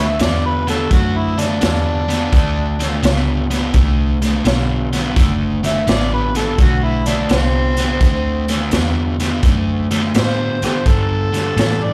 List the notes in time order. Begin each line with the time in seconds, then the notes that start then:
Already playing: D2 D3 A3
0.00 E5
0.19 E2 D3 B3 D5, snare, closed hi-hat
0.46 B4
0.67 D3 B3 A4, snare, closed hi-hat
0.91 F#2 D3 A3 F#4, kick, snare, closed hi-hat
1.17 E4
1.38 D3 A3 D4, snare, closed hi-hat
1.61 E2 D3 B3 D4, snare, closed hi-hat
2.08 D3 B3, snare, closed hi-hat
2.32 D2 D3 A3, kick, snare, closed hi-hat
2.79 D3 A3, snare, closed hi-hat
3.02 C#2 D3 B3, snare, closed hi-hat
3.50 D3 B3, snare, closed hi-hat
3.74 C2 D3 A3, kick, snare, closed hi-hat
4.22 D3 A3, snare, closed hi-hat
4.44 B1 D3 B3, snare, closed hi-hat
4.93 D3 B3, snare, closed hi-hat
5.16 F#1 D3 A3, kick, snare, closed hi-hat
5.63 D3 A3 E5, snare, closed hi-hat
5.87 A1 D3 B3 D5, snare, closed hi-hat
6.14 B4
6.35 D3 B3 A4, snare, closed hi-hat
6.58 B1 D3 A3 F#4, kick, snare, closed hi-hat
6.84 E4
7.06 D3 A3 D4, snare, closed hi-hat
7.29 C2 D3 B3 C4, snare, closed hi-hat
7.77 D3 B3, snare, closed hi-hat
8.01 D2 D3 A3, kick, snare, closed hi-hat
8.48 D3 A3, snare, closed hi-hat
8.71 E2 D3 B3, snare, closed hi-hat
9.20 D3 B3, snare, closed hi-hat
9.43 F#2 D3 A3, kick, snare, closed hi-hat
9.91 D3 A3, snare, closed hi-hat
10.14 A2 D3 B3 C5, snare, closed hi-hat
10.62 D3 B3 G4 A4 C5, muted fingered electric bass stroke, snare, closed hi-hat
10.86 G2 D3 A4, kick, snare, closed hi-hat
11.33 G2 D3, snare, closed hi-hat
11.56 G2 A2 E3, snare, closed hi-hat
11.84 D5